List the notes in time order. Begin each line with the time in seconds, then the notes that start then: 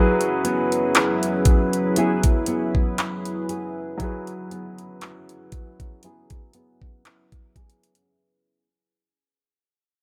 Already playing: F#3 C#4 E4 G#4 B4
0.21 closed hi-hat
0.44 B3, closed hi-hat
0.72 closed hi-hat
0.95 E4, clap, closed hi-hat
1.23 closed hi-hat
1.45 kick, closed hi-hat
1.73 closed hi-hat
1.96 B3 E4 G#4, closed hi-hat
2.23 kick, closed hi-hat
2.46 B3, closed hi-hat
2.75 kick
2.98 E4, clap, closed hi-hat
3.25 closed hi-hat
3.49 G#4, closed hi-hat
3.97 F#3 E4 G#4, kick, closed hi-hat
4.02 G#4 B4
4.27 closed hi-hat
4.51 B3, closed hi-hat
4.78 closed hi-hat
5.01 E4, clap, closed hi-hat
5.29 closed hi-hat
5.52 kick, closed hi-hat
5.80 kick, closed hi-hat
6.03 B3 E4 G#4, closed hi-hat
6.30 kick, closed hi-hat
6.53 B3, closed hi-hat
6.82 kick
7.05 E4, clap, closed hi-hat
7.32 kick, closed hi-hat
7.56 G#4, kick, closed hi-hat
7.70 closed hi-hat
7.83 closed hi-hat
7.95 closed hi-hat